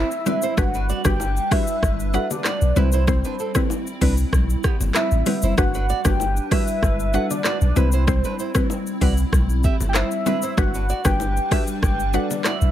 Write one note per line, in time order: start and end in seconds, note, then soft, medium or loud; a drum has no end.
0.00 0.55 G3 medium
0.00 0.55 C4 medium
0.00 0.55 E4 medium
0.00 0.60 E5 loud
0.11 shaker medium
0.26 0.55 G3 medium
0.26 0.55 C4 medium
0.26 0.38 D4 medium
0.26 0.55 E4 medium
0.26 0.55 B4 medium
0.26 0.38 B4 medium
0.26 low bongo medium
0.26 low conga medium
0.26 shaker medium
0.42 0.54 E4 medium
0.42 0.53 C5 medium
0.42 shaker medium
0.57 0.93 G1 medium
0.57 1.01 G3 loud
0.57 2.74 G3 medium
0.57 1.01 D4 medium
0.57 2.74 D4 medium
0.57 1.01 F#4 medium
0.57 2.74 B4 medium
0.57 1.01 B4 loud
0.57 1.05 F#5 loud
0.57 kick loud
0.57 cross-stick loud
0.57 low conga medium
0.57 shaker medium
0.74 0.85 D4 medium
0.74 0.84 B4 medium
0.74 shaker medium
0.89 1.01 F#4 medium
0.89 1.00 D5 medium
0.89 shaker medium
1.05 1.39 G1 loud
1.05 1.20 G3 medium
1.05 1.20 D4 medium
1.05 1.20 F#4 medium
1.05 1.20 B4 medium
1.05 1.53 G5 loud
1.05 kick medium
1.05 cross-stick loud
1.05 low bongo medium
1.05 shaker loud
1.20 high bongo medium
1.20 shaker medium
1.37 shaker medium
1.51 1.67 G3 medium
1.51 1.67 D4 medium
1.51 1.67 F#4 medium
1.51 1.63 G4 medium
1.51 1.67 B4 medium
1.51 2.32 E5 loud
1.51 1.63 E5 medium
1.51 kick medium
1.51 cross-stick medium
1.51 open hi-hat medium
1.51 shaker soft
1.67 shaker medium
1.83 2.18 G1 loud
1.83 kick medium
1.83 cross-stick loud
1.83 low conga medium
1.83 shaker medium
2.00 shaker medium
2.13 2.29 G3 medium
2.13 2.30 D4 medium
2.13 2.30 F#4 medium
2.13 2.26 A4 medium
2.13 2.30 B4 medium
2.13 2.25 F#5 medium
2.13 shaker soft
2.31 2.78 D5 loud
2.31 low bongo medium
2.31 shaker loud
2.44 2.57 F#4 medium
2.44 2.56 D5 medium
2.44 cross-stick medium
2.44 clap loud
2.44 high bongo medium
2.44 shaker medium
2.61 2.73 B1 medium
2.61 shaker medium
2.76 3.23 C2 loud
2.76 3.05 G3 medium
2.76 10.54 G3 medium
2.76 3.05 C4 medium
2.76 5.55 C4 medium
2.76 3.05 E4 medium
2.76 5.55 E4 medium
2.76 2.88 E4 medium
2.76 3.06 B4 medium
2.76 2.88 B4 medium
2.76 4.02 C5 medium
2.76 low bongo medium
2.76 low conga medium
2.76 shaker medium
2.92 3.04 E4 medium
2.92 3.03 C5 medium
2.92 shaker medium
3.07 3.51 G3 loud
3.07 3.51 C4 medium
3.07 3.51 E4 medium
3.07 3.51 C5 loud
3.07 kick loud
3.07 cross-stick loud
3.07 low conga medium
3.07 shaker medium
3.24 3.35 D4 medium
3.24 3.34 B4 medium
3.24 shaker medium
3.39 3.51 C4 medium
3.39 3.50 A4 medium
3.39 shaker medium
3.55 3.70 G3 medium
3.55 3.70 C4 medium
3.55 3.70 E4 medium
3.55 3.70 B4 medium
3.55 kick medium
3.55 cross-stick loud
3.55 low bongo medium
3.55 shaker loud
3.70 high bongo medium
3.70 shaker medium
3.87 shaker medium
4.01 4.25 C2 medium
4.01 4.17 G3 medium
4.01 4.17 C4 medium
4.01 4.13 D4 medium
4.01 4.17 E4 medium
4.01 4.17 B4 medium
4.01 4.13 B4 medium
4.01 kick medium
4.01 open hi-hat medium
4.01 shaker soft
4.17 shaker medium
4.33 4.56 B1 medium
4.33 kick medium
4.33 cross-stick loud
4.33 low conga medium
4.33 shaker medium
4.50 shaker medium
4.63 4.76 B3 medium
4.63 4.75 G4 medium
4.63 kick loud
4.63 cross-stick loud
4.63 shaker medium
4.80 4.91 G1 medium
4.80 low bongo medium
4.80 shaker loud
4.94 5.07 E4 medium
4.94 5.06 B4 medium
4.94 5.54 E5 loud
4.94 cross-stick loud
4.94 clap loud
4.94 high bongo medium
4.94 shaker medium
5.11 5.23 A1 medium
5.11 shaker medium
5.26 5.55 G3 medium
5.26 5.38 B3 medium
5.26 5.55 C4 medium
5.26 5.55 E4 medium
5.26 5.38 G4 medium
5.26 5.56 B4 medium
5.26 open hi-hat medium
5.26 low bongo medium
5.26 low conga medium
5.26 shaker medium
5.42 5.54 F#1 medium
5.42 5.54 E4 medium
5.42 5.53 C5 medium
5.42 shaker medium
5.57 5.93 G1 loud
5.57 6.01 G3 medium
5.57 6.01 D4 medium
5.57 7.74 D4 medium
5.57 6.01 F#4 medium
5.57 7.74 B4 medium
5.57 6.02 B4 loud
5.57 6.07 F#5 loud
5.57 kick loud
5.57 cross-stick loud
5.57 low conga medium
5.57 shaker medium
5.74 5.85 D4 medium
5.74 5.84 B4 medium
5.74 shaker medium
5.89 6.01 F#4 medium
5.89 6.00 D5 medium
5.89 shaker medium
6.05 6.39 G1 loud
6.05 6.20 G3 medium
6.05 6.20 D4 medium
6.05 6.20 F#4 medium
6.05 6.20 B4 medium
6.05 6.53 G5 loud
6.05 kick loud
6.05 cross-stick loud
6.05 low bongo medium
6.05 shaker loud
6.20 high bongo medium
6.20 shaker medium
6.37 shaker medium
6.51 6.67 G3 medium
6.51 6.67 D4 medium
6.51 6.67 F#4 medium
6.51 6.63 G4 medium
6.51 6.67 B4 medium
6.51 7.32 E5 loud
6.51 6.63 E5 medium
6.51 kick medium
6.51 cross-stick medium
6.51 open hi-hat medium
6.51 shaker soft
6.67 shaker medium
6.82 7.18 G1 medium
6.82 kick medium
6.82 cross-stick loud
6.82 low conga medium
6.82 shaker medium
7.00 shaker medium
7.13 7.29 G3 medium
7.13 7.30 D4 medium
7.13 7.30 F#4 medium
7.13 7.26 A4 medium
7.13 7.30 B4 medium
7.13 7.25 F#5 medium
7.13 shaker medium
7.30 7.78 D5 medium
7.30 low bongo medium
7.30 shaker loud
7.44 7.57 F#4 medium
7.44 7.56 D5 medium
7.44 cross-stick medium
7.44 clap loud
7.44 high bongo medium
7.44 shaker medium
7.61 7.73 B1 medium
7.61 shaker medium
7.76 8.23 C2 loud
7.76 8.05 G3 medium
7.76 8.05 C4 medium
7.76 10.55 C4 medium
7.76 10.55 E4 medium
7.76 8.05 E4 medium
7.76 7.88 E4 medium
7.76 8.05 B4 medium
7.76 7.88 B4 medium
7.76 9.02 C5 loud
7.76 low bongo medium
7.76 low conga medium
7.76 shaker medium
7.92 8.04 E4 medium
7.92 8.03 C5 medium
7.92 shaker medium
8.07 8.51 G3 loud
8.07 8.51 C4 medium
8.07 8.51 E4 medium
8.07 8.51 C5 loud
8.07 kick loud
8.07 cross-stick loud
8.07 low conga medium
8.07 shaker medium
8.24 8.35 D4 medium
8.24 8.34 B4 medium
8.24 shaker medium
8.39 8.51 E4 medium
8.39 8.50 C5 medium
8.39 shaker medium
8.55 8.70 G3 medium
8.55 8.70 C4 medium
8.55 8.70 E4 medium
8.55 8.70 B4 medium
8.55 kick loud
8.55 cross-stick loud
8.55 low bongo medium
8.55 shaker loud
8.70 high bongo medium
8.70 shaker medium
8.87 shaker medium
9.01 9.24 C2 medium
9.01 9.17 G3 medium
9.01 9.17 C4 medium
9.01 9.17 E4 medium
9.01 9.13 F#4 medium
9.01 9.17 B4 medium
9.01 9.13 D5 medium
9.01 kick medium
9.01 open hi-hat medium
9.01 shaker soft
9.17 shaker medium
9.32 9.68 B1 loud
9.32 kick medium
9.32 cross-stick loud
9.32 low conga medium
9.32 shaker medium
9.50 shaker medium
9.63 9.76 G4 medium
9.63 9.75 E5 medium
9.63 kick loud
9.63 shaker medium
9.80 10.03 G1 medium
9.80 low bongo medium
9.80 shaker loud
9.89 9.97 G5 medium
9.94 10.07 E4 medium
9.94 10.06 C5 medium
9.94 10.60 E5 loud
9.94 cross-stick loud
9.94 clap loud
9.94 high bongo medium
9.94 shaker medium
10.11 shaker medium
10.26 10.55 G3 medium
10.26 10.55 C4 medium
10.26 10.38 D4 medium
10.26 10.55 E4 medium
10.26 10.55 B4 medium
10.26 10.38 B4 medium
10.26 low bongo medium
10.26 low conga medium
10.26 shaker medium
10.42 10.54 E4 medium
10.42 10.53 C5 medium
10.42 shaker medium
10.57 10.93 G1 loud
10.57 11.01 G3 medium
10.57 12.71 G3 medium
10.57 11.01 D4 medium
10.57 12.71 D4 medium
10.57 11.01 F#4 medium
10.57 12.71 B4 medium
10.57 11.01 B4 loud
10.57 11.05 F#5 loud
10.57 kick loud
10.57 cross-stick loud
10.57 low conga medium
10.57 shaker medium
10.74 10.85 D4 medium
10.74 10.84 B4 medium
10.74 shaker medium
10.89 11.01 F#4 medium
10.89 11.00 D5 medium
10.89 shaker medium
11.05 11.39 G1 loud
11.05 11.20 G3 medium
11.05 11.20 D4 medium
11.05 11.20 F#4 medium
11.05 11.20 B4 medium
11.05 11.79 G5 loud
11.05 kick loud
11.05 cross-stick loud
11.05 low bongo medium
11.05 shaker loud
11.20 high bongo medium
11.20 shaker medium
11.37 shaker medium
11.51 11.67 G3 medium
11.51 11.67 D4 medium
11.51 11.67 F#4 medium
11.51 11.63 G4 medium
11.51 11.67 B4 medium
11.51 11.63 E5 medium
11.51 kick medium
11.51 cross-stick medium
11.51 open hi-hat medium
11.51 shaker soft
11.67 shaker medium
11.82 12.18 G1 loud
11.82 12.16 G5 loud
11.82 kick loud
11.82 cross-stick loud
11.82 low conga medium
11.82 shaker medium
12.00 shaker medium
12.13 12.29 G3 medium
12.13 12.30 D4 medium
12.13 12.30 F#4 medium
12.13 12.26 A4 medium
12.13 12.30 B4 medium
12.13 12.47 D5 medium
12.13 12.25 F#5 medium
12.13 shaker medium
12.31 low bongo medium
12.31 shaker loud
12.44 12.57 F#4 medium
12.44 12.56 D5 medium
12.44 12.71 E5 loud
12.44 cross-stick loud
12.44 clap loud
12.44 high bongo medium
12.44 shaker medium
12.61 12.71 B1 medium
12.61 shaker medium